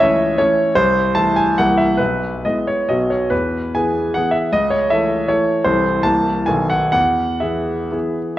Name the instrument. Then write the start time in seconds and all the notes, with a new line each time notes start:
grand piano
Already playing: C#2 C#5 D#5
0.00 E3 A3 C#4 E5
0.38 E3 A3 C#4 C#5
0.75 C2 C5
1.15 E3 A3 E4 A5
1.36 G#5
1.58 C2 E3 A#3 E4 F#5
1.77 E5
1.97 B1 B4
2.45 G#3 B3 E4 D#5
2.67 C#5
2.89 B1 F#3 B3 F#4 D#5
3.10 C#5
3.30 E2 B4
3.75 E3 B3 G#4 G#5
4.14 E3 B3 G#4 F#5
4.31 E5
4.52 C#2 D#5
4.70 C#5
4.90 E3 A3 A4 E5
5.28 E3 A3 A4 C#5
5.65 C2 E3 C4 A4 C5
6.03 C2 E3 A#3 A#4 A5
6.46 B1 D#3 B3 A4 G#5
6.70 F#5
6.92 E2 F#5
7.40 E3 B3 G#4 E5
7.91 E3 B3 G#4